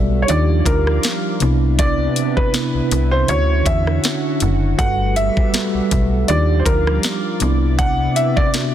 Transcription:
0.00 0.25 B1 medium
0.00 0.27 G3 medium
0.00 0.31 G3 medium
0.00 0.27 A3 medium
0.00 0.27 B3 medium
0.00 0.26 F#4 medium
0.00 0.31 F#4 medium
0.00 0.31 A4 medium
0.00 0.31 B4 medium
0.00 0.30 D5 medium
0.00 0.19 E5 medium
0.22 0.29 C#5 medium
0.28 0.63 D#2 loud
0.28 1.40 F3 medium
0.28 1.40 G3 medium
0.28 1.36 D4 medium
0.28 1.35 D#4 medium
0.28 1.40 F4 medium
0.28 1.36 F4 medium
0.28 1.37 G4 medium
0.28 0.68 D5 medium
0.28 1.40 D5 medium
0.28 closed hi-hat medium
0.66 0.99 D2 medium
0.66 1.37 A#4 medium
0.66 kick medium
0.66 closed hi-hat medium
0.87 cross-stick medium
1.03 snare loud
1.03 closed hi-hat medium
1.40 2.08 C2 medium
1.40 2.48 C3 medium
1.40 3.27 C3 medium
1.40 2.48 B3 medium
1.40 3.27 B3 medium
1.40 3.27 D4 medium
1.40 2.49 D4 medium
1.40 4.76 E4 medium
1.40 2.49 E4 medium
1.40 closed hi-hat medium
1.79 2.33 D5 medium
1.79 kick loud
1.79 closed hi-hat medium
2.16 closed hi-hat medium
2.37 3.14 B4 medium
2.37 kick medium
2.53 3.28 C3 medium
2.53 3.29 B3 medium
2.53 3.29 D4 medium
2.53 3.29 E4 medium
2.53 snare loud
2.53 closed hi-hat medium
2.75 2.82 C2 soft
2.91 3.25 C2 medium
2.91 closed hi-hat medium
3.11 3.28 C5 medium
3.28 3.63 D2 loud
3.28 4.71 D3 medium
3.28 4.78 D3 medium
3.28 4.71 C#4 medium
3.28 4.78 C#4 medium
3.28 4.72 E4 medium
3.28 6.26 F#4 medium
3.28 4.72 F#4 medium
3.28 3.64 C#5 medium
3.28 closed hi-hat medium
3.66 3.99 E2 medium
3.66 4.37 E5 loud
3.66 kick medium
3.66 closed hi-hat medium
3.87 cross-stick medium
4.04 snare loud
4.04 closed hi-hat medium
4.40 4.75 F#1 medium
4.40 closed hi-hat medium
4.78 5.30 G1 loud
4.78 5.50 G3 medium
4.78 6.27 G3 medium
4.78 6.28 A3 medium
4.78 6.28 B3 medium
4.78 5.50 F#4 medium
4.78 5.50 A4 medium
4.78 5.51 B4 medium
4.78 5.17 F#5 loud
4.78 kick loud
4.78 closed hi-hat medium
5.16 6.25 E5 loud
5.16 closed hi-hat medium
5.37 kick medium
5.53 6.28 G3 medium
5.53 6.29 F#4 medium
5.53 6.29 A4 medium
5.53 6.30 B4 medium
5.53 snare loud
5.53 closed hi-hat medium
5.75 5.81 B1 soft
5.91 6.25 B1 medium
5.91 kick loud
5.91 closed hi-hat medium
6.28 6.63 D#2 loud
6.28 7.40 F3 medium
6.28 7.40 G3 medium
6.28 7.36 D4 medium
6.28 7.35 D#4 medium
6.28 7.40 F4 medium
6.28 7.36 F4 medium
6.28 7.37 G4 medium
6.28 6.61 D5 medium
6.28 8.74 D5 medium
6.28 closed hi-hat medium
6.60 6.66 C5 medium
6.65 6.99 D2 medium
6.65 7.37 A#4 medium
6.65 kick medium
6.65 closed hi-hat medium
6.87 cross-stick loud
7.03 snare loud
7.03 closed hi-hat medium
7.40 8.08 C2 medium
7.40 8.48 C3 medium
7.40 8.74 C3 medium
7.40 8.48 B3 medium
7.40 8.74 B3 medium
7.40 8.49 D4 medium
7.40 8.74 E4 medium
7.40 8.49 E4 medium
7.40 closed hi-hat medium
7.79 8.17 F#5 loud
7.79 kick loud
7.79 closed hi-hat medium
8.16 8.37 E5 medium
8.16 closed hi-hat medium
8.36 8.74 D5 medium
8.36 kick medium
8.53 8.74 C3 medium
8.53 8.74 B3 medium
8.53 8.74 D4 medium
8.53 8.74 F#4 medium
8.53 snare loud
8.53 closed hi-hat medium

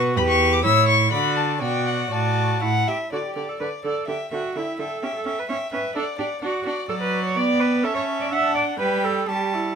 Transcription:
0.00 0.19 B2 medium
0.00 0.18 F#4 medium
0.00 0.15 B4 medium
0.16 0.66 E2 medium
0.16 0.63 G4 medium
0.16 0.63 B4 medium
0.16 0.22 B5 medium
0.28 0.54 C#6 loud
0.53 0.64 D6 medium
0.64 1.12 A2 medium
0.64 1.11 E4 medium
0.64 1.11 C#5 medium
0.64 0.88 E6 loud
0.88 1.12 C#6 loud
1.11 1.63 D3 medium
1.11 1.57 F#4 medium
1.11 1.57 D5 medium
1.11 1.38 B5 loud
1.37 1.63 A5 medium
1.61 2.11 B2 medium
1.61 2.10 F#4 medium
1.61 2.10 D5 medium
1.61 1.88 G5 medium
1.87 2.14 F#5 medium
2.11 2.61 A2 medium
2.11 2.63 F#4 medium
2.11 2.61 D5 medium
2.11 2.88 A5 medium
2.62 2.87 A2 medium
2.62 2.91 E4 medium
2.62 2.89 F#5 medium
2.87 2.95 G4 medium
2.87 3.12 E5 medium
3.12 3.21 D3 soft
3.12 3.24 F#4 soft
3.12 3.35 D5 soft
3.24 3.50 G4 medium
3.36 3.44 D3 soft
3.36 3.59 D5 soft
3.36 3.60 D5 soft
3.49 3.60 A4 soft
3.60 3.68 D3 soft
3.60 3.68 B4 soft
3.60 3.83 D5 soft
3.60 3.84 D5 soft
3.84 3.92 D3 soft
3.84 4.07 A4 soft
3.84 4.07 D5 soft
4.08 4.16 D3 soft
4.08 4.16 G4 medium
4.08 4.31 E5 soft
4.08 4.32 G5 soft
4.32 4.40 D3 soft
4.32 4.57 F#4 medium
4.32 4.54 E5 soft
4.32 4.55 G5 soft
4.55 4.64 D3 soft
4.55 4.81 E4 soft
4.55 4.78 E5 soft
4.55 4.78 G5 soft
4.79 4.87 D3 soft
4.79 5.05 A4 medium
4.79 5.02 E5 soft
4.79 5.02 G5 soft
5.02 5.11 C#4 soft
5.02 5.15 G4 medium
5.02 5.25 E5 soft
5.02 5.24 G5 soft
5.15 5.40 A4 medium
5.25 5.34 C#4 soft
5.25 5.49 E5 soft
5.25 5.47 G5 soft
5.39 5.49 B4 medium
5.48 5.57 C#4 soft
5.48 5.57 C#5 medium
5.48 5.72 E5 soft
5.48 5.71 G5 soft
5.72 5.80 C#4 soft
5.72 5.95 B4 medium
5.72 5.95 E5 soft
5.72 5.95 G5 soft
5.95 6.04 D4 medium
5.95 6.04 A4 medium
5.95 6.18 D5 soft
5.95 6.19 F#5 soft
6.19 6.27 D4 medium
6.19 6.27 G4 medium
6.19 6.41 D5 soft
6.19 6.41 F#5 soft
6.42 6.50 D4 soft
6.42 6.66 F#4 medium
6.42 6.65 D5 soft
6.42 6.65 F#5 soft
6.66 6.74 D4 medium
6.66 6.88 D5 soft
6.66 6.89 F#5 soft
6.89 7.38 F#3 medium
6.89 6.94 A4 medium
6.89 7.33 D5 medium
6.89 7.38 F#5 soft
7.01 7.24 B4 medium
7.25 7.38 C#5 medium
7.36 7.85 B3 medium
7.36 7.61 D5 medium
7.36 7.86 D5 medium
7.36 7.86 G5 medium
7.60 7.85 B4 medium
7.83 8.33 C#4 medium
7.83 7.94 A4 medium
7.83 8.34 E5 medium
7.83 8.32 A5 soft
7.95 8.03 C#5 medium
8.20 8.31 D5 medium
8.31 8.79 D4 medium
8.31 8.54 E5 medium
8.31 8.79 F#5 soft
8.31 8.79 A5 medium
8.55 8.63 D5 medium
8.79 9.26 G3 medium
8.79 9.06 B4 medium
8.79 9.25 G5 medium
8.79 9.31 B5 medium
9.04 9.30 A4 medium
9.28 9.75 G3 soft
9.28 9.55 G4 medium
9.28 9.75 A5 soft
9.28 9.75 C#6 soft
9.54 9.75 E4 medium

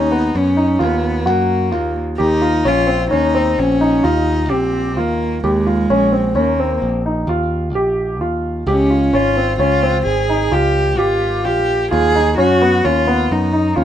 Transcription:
0.00 0.30 D#2 medium
0.00 0.38 D#4 medium
0.11 0.52 B3 medium
0.35 0.77 F#2 medium
0.35 0.84 C#4 medium
0.57 0.77 D#4 medium
0.79 1.27 D#2 medium
0.79 1.31 B3 medium
0.79 1.21 F4 medium
1.26 1.74 F#2 medium
1.26 1.97 A#3 medium
1.26 1.67 F#4 medium
1.72 2.16 D#2 medium
1.72 2.13 F4 medium
2.18 2.62 D#2 medium
2.18 2.68 D#4 medium
2.18 2.39 G4 medium
2.41 2.62 F4 medium
2.65 3.08 A#1 medium
2.65 2.86 C#4 medium
2.65 3.11 F4 medium
2.87 3.08 C4 medium
3.11 3.55 D#2 medium
3.11 3.32 C#4 medium
3.11 3.60 D#4 medium
3.35 3.76 C4 medium
3.58 4.01 A#1 medium
3.58 4.05 C#4 medium
3.81 4.01 D#4 medium
4.03 4.51 D#2 medium
4.03 4.52 D#4 medium
4.03 4.45 F4 medium
4.50 4.98 A#1 medium
4.50 5.00 C4 medium
4.50 4.91 G4 medium
4.97 5.40 D#2 medium
4.97 5.44 A#3 medium
4.97 5.38 F4 medium
5.44 5.86 D#2 medium
5.44 6.40 G#3 medium
5.44 5.64 G4 medium
5.66 5.87 F4 medium
5.90 6.32 A#1 medium
5.90 6.10 C#4 medium
6.12 6.33 C4 medium
6.35 6.78 D#2 medium
6.35 6.83 A#3 medium
6.35 6.56 C#4 medium
6.60 7.00 C4 medium
6.82 7.25 A#1 medium
7.06 7.26 D#4 medium
7.27 7.75 D#2 medium
7.27 7.70 F4 medium
7.75 8.20 A#1 medium
7.75 8.16 G4 medium
8.20 8.63 D#2 medium
8.20 8.62 F4 medium
8.67 9.09 C#2 medium
8.67 9.16 C#4 medium
8.67 8.88 G4 medium
8.91 9.11 F4 medium
9.13 9.56 G#1 medium
9.13 9.34 C#4 medium
9.13 9.60 F4 medium
9.37 9.57 C4 medium
9.58 10.02 C#2 medium
9.58 9.80 C#4 medium
9.58 10.03 F4 medium
9.83 10.24 C4 medium
10.05 10.48 G#1 medium
10.05 10.54 G#4 medium
10.29 10.50 D#4 medium
10.52 10.99 C#2 medium
10.52 10.93 F4 medium
10.52 11.00 G4 medium
10.98 11.46 G#1 medium
10.98 11.46 F4 medium
10.98 11.40 G4 medium
11.45 11.88 A#1 medium
11.45 11.86 F4 medium
11.45 11.91 G4 medium
11.91 12.35 D#2 medium
11.91 12.12 F4 medium
11.91 12.35 G#4 medium
12.15 12.36 D#4 medium
12.38 12.81 F#2 medium
12.38 12.58 C#4 medium
12.38 12.86 F#4 medium
12.62 12.82 B3 medium
12.84 13.27 D#2 medium
12.84 13.05 C#4 medium
12.84 13.33 F4 medium
13.07 13.48 B3 medium
13.31 13.73 F#2 medium
13.31 13.78 D#4 medium
13.53 13.74 D#4 medium
13.76 13.84 D#2 medium
13.76 13.84 C#4 medium
13.76 13.84 F4 medium

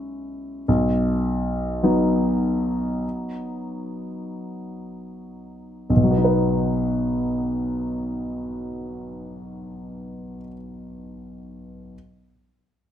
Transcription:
0.00 0.63 G#3 soft
0.00 0.64 C#4 soft
0.00 0.64 E4 soft
0.68 1.80 B1 soft
1.83 5.86 F#3 soft
1.83 5.86 B3 soft
1.83 5.86 D#4 soft
5.90 10.37 B1 soft
5.96 10.41 B2 soft
6.03 10.44 F#3 soft
6.11 10.48 B3 soft
6.18 10.51 D#4 soft
6.24 10.55 B4 soft

